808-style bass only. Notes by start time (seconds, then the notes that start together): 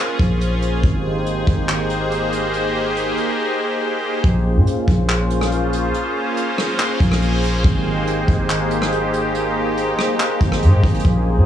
0.19 A#1
0.83 G#1
1.47 G#1
4.24 A#1
4.56 A#2
4.88 A#1
7.00 A#1
7.64 G#1
8.28 G#1
10.41 G#1
10.62 G#2
10.84 G#1
11.05 A#1
11.37 A#2